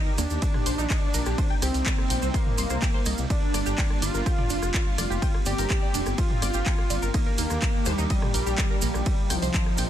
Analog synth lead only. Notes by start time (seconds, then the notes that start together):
0.19 D4
1.62 C4
2.34 A#3
3.30 D4
4.02 F4
5.46 G4
6.18 F4
7.14 A#3
7.86 G3
9.30 F3